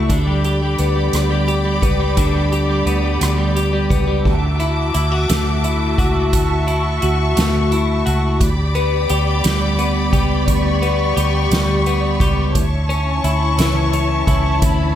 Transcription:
Already playing: clean electric guitar A3 E4 F#4
0.10 fingered electric bass D2, clean electric guitar D3, string section G4 D5 B5 D6, kick, closed hi-hat
0.27 clean electric guitar G3
0.44 clean electric guitar G4, closed hi-hat
0.62 clean electric guitar G3
0.78 fingered electric bass D2, clean electric guitar B3, closed hi-hat
0.96 clean electric guitar G3
1.13 fingered electric bass D2, cross-stick, closed hi-hat
1.30 clean electric guitar G3
1.48 clean electric guitar G4, closed hi-hat
1.65 clean electric guitar G3
1.82 fingered electric bass C#2, clean electric guitar B3, kick, closed hi-hat
2.00 clean electric guitar G3
2.17 fingered electric bass D2, clean electric guitar D3, kick, closed hi-hat
2.35 clean electric guitar G3
2.52 clean electric guitar G4, closed hi-hat
2.69 clean electric guitar G3
2.86 fingered electric bass D2, clean electric guitar B3, closed hi-hat
3.04 clean electric guitar G3
3.21 fingered electric bass D2, cross-stick, closed hi-hat
3.38 clean electric guitar G3
3.56 clean electric guitar G4, closed hi-hat
3.73 clean electric guitar G3
3.90 fingered electric bass C#2, clean electric guitar B3, kick, closed hi-hat
4.07 clean electric guitar G3
4.25 fingered electric bass D2, string section F#4 E5 A5 D6, kick, crash
4.60 clean electric guitar E4, closed hi-hat
4.94 fingered electric bass D2, clean electric guitar E4, closed hi-hat
5.12 clean electric guitar F#4
5.29 fingered electric bass D2, clean electric guitar A3, snare, closed hi-hat
5.64 clean electric guitar E4, closed hi-hat
5.98 fingered electric bass C#2, clean electric guitar F#4, kick, closed hi-hat
6.33 fingered electric bass D2, string section C#6, kick, closed hi-hat
6.67 clean electric guitar E4, closed hi-hat
7.02 fingered electric bass D2, clean electric guitar F#4, closed hi-hat
7.37 fingered electric bass D2, clean electric guitar A3, snare, closed hi-hat
7.72 clean electric guitar E4, closed hi-hat
8.06 fingered electric bass C#2, clean electric guitar F#4, closed hi-hat
8.40 fingered electric bass D2, string section G4 D5 B5 D6, kick, closed hi-hat
8.75 clean electric guitar B3, closed hi-hat
9.09 fingered electric bass D2, clean electric guitar G4, closed hi-hat
9.44 fingered electric bass D2, clean electric guitar G3, snare, closed hi-hat
9.79 clean electric guitar B3, closed hi-hat
10.13 fingered electric bass C#2, clean electric guitar G4, kick, closed hi-hat
10.47 fingered electric bass D2, string section C#6, kick, closed hi-hat
10.82 clean electric guitar B3, closed hi-hat
11.17 fingered electric bass D2, clean electric guitar G4, closed hi-hat
11.51 fingered electric bass D2, clean electric guitar G3, snare, closed hi-hat
11.86 clean electric guitar B3, closed hi-hat
12.20 fingered electric bass C#2, clean electric guitar G4, kick, closed hi-hat
12.55 fingered electric bass D2, string section E4 C#5 A5 C#6, kick, closed hi-hat
12.89 clean electric guitar C#4, closed hi-hat
13.24 fingered electric bass D2, clean electric guitar E4, closed hi-hat
13.58 fingered electric bass C#2, clean electric guitar E3, snare, closed hi-hat
13.93 clean electric guitar C#4, closed hi-hat
14.27 fingered electric bass C#2, clean electric guitar E4, kick, closed hi-hat
14.62 fingered electric bass D2, string section B5, kick, closed hi-hat

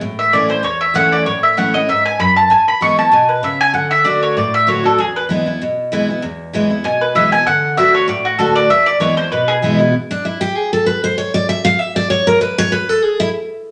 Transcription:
0.01 steel-string acoustic guitar A2
0.19 mandolin E5
0.33 steel-string acoustic guitar E3 A3 C#4 E4, mandolin D5
0.48 steel-string acoustic guitar C#4 E4, mandolin C5
0.63 steel-string acoustic guitar E2, mandolin C#5
0.81 mandolin E5
0.94 steel-string acoustic guitar E3 A3 C#4 E4, mandolin F#5
1.12 mandolin D5
1.26 steel-string acoustic guitar A2, mandolin C#5
1.43 mandolin E5
1.57 steel-string acoustic guitar E3 A3 C#4 E4, mandolin F#5
1.73 steel-string acoustic guitar C#4 E4, mandolin D#5
1.89 steel-string acoustic guitar G#2, mandolin E5
2.06 mandolin G#5
2.19 steel-string acoustic guitar F#2, mandolin B5
2.36 mandolin A5
2.50 steel-string acoustic guitar E2, mandolin G#5
2.68 mandolin B5
2.81 steel-string acoustic guitar E3 G#3 B3 E4, mandolin C#6
2.97 steel-string acoustic guitar B3 E4, mandolin A5
3.12 steel-string acoustic guitar B2, mandolin G#5
3.29 mandolin B4
3.43 steel-string acoustic guitar C#3, mandolin E5
3.61 mandolin G#5
3.74 steel-string acoustic guitar D3, mandolin F#5
3.91 mandolin E5
4.04 steel-string acoustic guitar D3 A3 D4 F#4, mandolin D5
4.23 mandolin C#5
4.37 steel-string acoustic guitar A2, mandolin D5
4.54 mandolin E5
4.67 steel-string acoustic guitar D3 A3 D4 F#4, mandolin C#5
4.84 steel-string acoustic guitar D4 F#4, mandolin A4
4.98 steel-string acoustic guitar E2, mandolin G#4
5.16 mandolin B4
5.29 steel-string acoustic guitar E3 G#3 B3 E4
5.46 steel-string acoustic guitar B3 E4
5.62 steel-string acoustic guitar B2
5.92 steel-string acoustic guitar E3 G#3 B3 E4
6.08 steel-string acoustic guitar B3 E4
6.22 steel-string acoustic guitar E2
6.53 steel-string acoustic guitar E3 G#3 B3 E4
6.70 steel-string acoustic guitar B3 E4
6.84 steel-string acoustic guitar B2, mandolin G#5
7.01 mandolin B4
7.15 steel-string acoustic guitar E3 G#3 B3 E4, mandolin E5
7.32 steel-string acoustic guitar B3 E4, mandolin G#5
7.47 steel-string acoustic guitar D3, mandolin F#5
7.77 steel-string acoustic guitar D3 A3 D4 F#4, mandolin E5
7.95 mandolin C#5
8.08 steel-string acoustic guitar A2, mandolin D5
8.25 mandolin F#4
8.39 steel-string acoustic guitar D3 A3 D4 F#4, mandolin A4
8.56 mandolin D5
8.70 steel-string acoustic guitar E2, mandolin E5
8.86 mandolin D5
9.00 steel-string acoustic guitar E3 G#3 B3 E4, mandolin C#5
9.17 steel-string acoustic guitar B3 E4, mandolin C5
9.32 steel-string acoustic guitar B2, mandolin B4
9.48 mandolin G#4
9.62 steel-string acoustic guitar E3 G#3 B3 E4
9.79 steel-string acoustic guitar B3 E4
10.11 steel-string acoustic guitar D4
10.25 steel-string acoustic guitar E4
10.41 steel-string acoustic guitar G4
10.56 steel-string acoustic guitar G#4
10.73 steel-string acoustic guitar A4
10.86 steel-string acoustic guitar B4
11.04 steel-string acoustic guitar C5
11.18 steel-string acoustic guitar C#5
11.34 steel-string acoustic guitar D5
11.49 steel-string acoustic guitar E5
11.65 steel-string acoustic guitar F5
11.79 steel-string acoustic guitar E5
11.96 steel-string acoustic guitar D5
12.10 steel-string acoustic guitar C#5
12.27 steel-string acoustic guitar A#4
12.41 steel-string acoustic guitar B4
12.58 steel-string acoustic guitar C#5
12.72 steel-string acoustic guitar B4
12.89 steel-string acoustic guitar A4
13.03 steel-string acoustic guitar G#4
13.20 steel-string acoustic guitar E4

